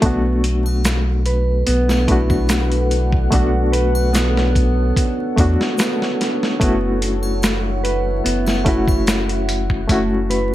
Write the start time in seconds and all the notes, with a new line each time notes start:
0.02 B1 A3 B3 D4 A4 B4 F#5, kick, closed hi-hat
0.06 F#4
0.44 closed hi-hat
0.66 triangle
0.85 snare, closed hi-hat, shaker
1.26 B4, closed hi-hat
1.67 B1 B3, closed hi-hat
1.89 snare, triangle
2.08 A3 B3 D4 E4, kick, closed hi-hat
2.12 F#4
2.30 kick, triangle
2.49 snare, closed hi-hat, shaker
2.72 closed hi-hat
2.91 closed hi-hat
3.12 kick
3.31 B1 A3 B3 D4 C#5, kick, closed hi-hat
3.35 F#4
3.72 B4, closed hi-hat
3.95 triangle
4.13 B3, snare, closed hi-hat, shaker
4.37 snare
4.55 kick, closed hi-hat
4.96 kick, closed hi-hat
5.36 E2 A3 B3 D4, kick, closed hi-hat
5.40 F#4
5.61 snare
5.78 B3, snare, closed hi-hat, shaker
6.02 snare
6.21 snare, closed hi-hat
6.43 snare
6.60 F#1 A3 B3 C#4 E4 F#5, kick, closed hi-hat
6.64 F#4
7.02 closed hi-hat
7.23 triangle
7.43 snare, closed hi-hat, shaker
7.84 B4, closed hi-hat
8.24 F#1 B3, closed hi-hat
8.47 snare, triangle
8.65 A3 C#4 E4 F#4, kick, closed hi-hat
8.88 kick, triangle
9.07 snare, closed hi-hat, shaker
9.29 closed hi-hat
9.49 closed hi-hat
9.70 kick
9.88 F#1 A3 C#4 E4, kick, closed hi-hat
9.92 F#4
10.30 B4, closed hi-hat